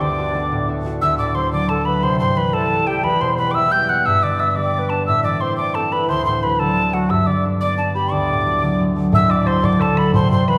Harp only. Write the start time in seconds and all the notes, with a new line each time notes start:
Already playing: A3 B3 D4 E4 G4
0.01 D2
0.18 A3 D4 F#4
0.34 A3 D4 F#4
0.52 A2
0.68 A3 D4 F#4
0.85 A3 D4 F#4
1.02 D2
1.19 A2
1.35 F#3
1.53 D3
1.69 F#3
1.85 A3
2.03 C2
2.20 G2
2.37 E3
2.54 C3
2.71 E3
2.87 G3
3.03 E2
3.21 B2
3.38 G3
3.56 E3
3.73 G3
3.89 B3
4.06 G2
4.23 D3
4.40 B3
4.57 G3
4.73 B3
4.91 D4
5.08 A2
5.24 E3
5.41 C4
5.58 A3
5.75 C4
5.92 E4
6.09 D2
6.26 A2
6.44 F#3
6.60 D3
6.77 F#3
6.93 A3
7.10 G2
7.27 D3
7.45 D4
7.61 B3
7.78 D4
7.95 G4
8.12 D2
8.29 A2
8.46 F#3
8.63 D3
8.80 F#3
8.96 A3
9.12 D1 D2
9.30 A2
9.46 F#3
9.63 D3
9.80 F#3
9.97 A3
10.14 C2
10.30 G2
10.47 E3